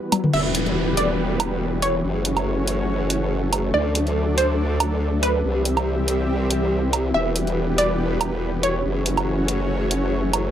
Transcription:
Already playing: E3 G3 B3 F#4 B4
0.12 closed hi-hat, high tom, low woodblock
0.24 mid tom
0.33 E1 E3 G3 B3 G4 B4 E5, crash, downlifter
0.55 closed hi-hat
0.66 closed hi-hat
0.97 D5, closed hi-hat
1.40 closed hi-hat, low woodblock
1.82 C#5, closed hi-hat
2.04 F#1 A3 C#4 F#4 C#5
2.25 closed hi-hat
2.37 closed hi-hat, low woodblock
2.67 closed hi-hat
3.10 closed hi-hat
3.53 closed hi-hat, low woodblock
3.74 D2 F#3 D4 A4 D5
3.95 closed hi-hat
4.07 closed hi-hat
4.38 C5, closed hi-hat
4.80 closed hi-hat, low woodblock
5.23 B4, closed hi-hat
5.44 C2 E3 G3 C4 G4 E5
5.65 closed hi-hat
5.77 closed hi-hat, low woodblock
6.08 closed hi-hat
6.51 closed hi-hat
6.93 closed hi-hat, low woodblock
7.14 E1 G3 B3 G4 B4 E5
7.36 closed hi-hat
7.47 closed hi-hat
7.78 D5, closed hi-hat
8.21 closed hi-hat, low woodblock
8.63 C#5, closed hi-hat
8.84 F#1 A3 C#4 F#4 C#5
9.06 closed hi-hat
9.17 closed hi-hat, low woodblock
9.48 closed hi-hat
9.91 closed hi-hat
10.33 closed hi-hat, low woodblock

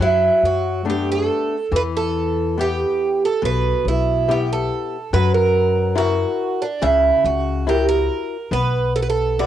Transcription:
0.00 F#2 F#3 E4
0.43 F#2 F#4
0.85 A3 B3 D4
0.90 G4
1.12 A4
1.72 E2 E3
1.76 B4
1.97 A4
2.58 B3 E4 G4
3.25 A4
3.42 B1 B2 B4
3.85 B1 E4
4.28 B3 E4 G4
4.53 A4
5.13 F#2 F#3 B4
5.34 A#4
5.95 E4 F#4 A#4
6.62 D4
6.82 C#2 C#3 E4
7.24 C#2 F#4
7.67 E4 F#4 G4 A#4
7.89 A#4
8.51 B1 B3 B4
8.96 A4
9.02 B4
9.10 A4
9.39 F#4 A4 B4 D5

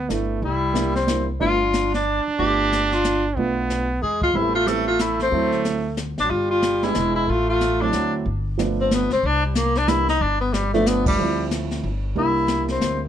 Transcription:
Already playing: B3
0.09 G1 A3 B3 D4 E4, snare, hi-hat pedal
0.42 C2 G3 E4, brush sweep, kick
0.73 G3 A#3 D4 E4, snare, hi-hat pedal
0.95 C4, snare
1.07 G3 A#3 D4 E4, snare, hi-hat pedal
1.39 G1 A3 B3 D4 F4, brush sweep, kick
1.73 snare, hi-hat pedal
1.94 D4, snare
2.27 muted upright bass stroke
2.39 G1 A3 B3 D4 F4 G4, brush sweep, kick
2.72 snare, hi-hat pedal
2.92 F4, snare
3.04 snare, hi-hat pedal
3.37 B1 A3 B3 D4 F4, brush sweep, kick
3.70 snare, hi-hat pedal
4.02 E2 G#3 G#4
4.22 F4, kick
4.34 A1 G3 A3 B3 C4 E4, brush sweep, kick
4.55 F4
4.66 G3 B3 C4 E4 A4, snare, hi-hat pedal
4.87 F4
4.99 E4, snare, hi-hat pedal
5.19 C4, snare
5.31 D2 F#3 A3 C4 E4, brush sweep, kick
5.52 snare
5.65 snare, hi-hat pedal
5.97 snare, hi-hat pedal
6.18 A1 D4, snare
6.23 F#3
6.30 G1 G3 F4, brush sweep, kick
6.51 F4
6.62 snare, hi-hat pedal
6.83 G#3 B3 D4 E4, snare
6.94 E1 G#3, snare, hi-hat pedal
7.16 E4
7.27 A1 A3 F4, brush sweep, kick
7.49 F4
7.61 snare, hi-hat pedal
7.81 F#3 A3 C4 D4 E4
7.92 D2 F#3, snare, hi-hat pedal
8.26 G1, brush sweep, kick
8.58 F3 A3 B3 D4, snare, hi-hat pedal
8.80 C4
8.91 B3, snare, hi-hat pedal
9.10 C#2 C4, snare
9.23 C2 D4, brush sweep, kick
9.46 G3
9.55 A#3, snare, hi-hat pedal
9.75 D4, snare
9.87 E3 G3 A#3 D4 E4, snare, hi-hat pedal
10.08 D#4, snare
10.21 G1 D4, brush sweep, kick
10.41 B3
10.53 G3, snare, hi-hat pedal
10.74 F3 A3 B3 D4, snare
10.86 B3, snare, hi-hat pedal
11.06 G3, kick, ride
11.19 D2 F3 A3 C4 E4, brush sweep
11.51 snare, hi-hat pedal
11.71 snare
11.84 G1
12.15 C2 G3 A#3 D4 E4, brush sweep, kick
12.48 snare, hi-hat pedal
12.68 C4, snare
12.81 D2, snare, hi-hat pedal

